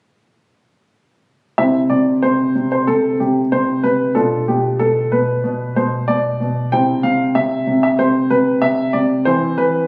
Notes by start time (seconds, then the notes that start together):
1.58 C3 C4 E4 E5
1.90 C3 D5
2.23 C3 C5
2.55 C3
2.72 C5
2.87 C3 A4
3.20 C3 G4
3.52 C3 C5
3.83 C3 B4
4.15 B2 D4 F4 A4
4.48 B2 G4
4.79 B2 A4
5.12 B2 B4
5.44 B2
5.76 B2 C5
6.08 B2 D5
6.40 B2
6.72 C3 C4 E4 G5
7.03 C3 F5
7.35 C3 E5
7.67 C3
7.83 E5
7.99 C3 C5
8.30 C3 B4
8.62 C3 E5
8.93 C3 D5
9.25 E3 C4 E4 C5
9.58 E3 B4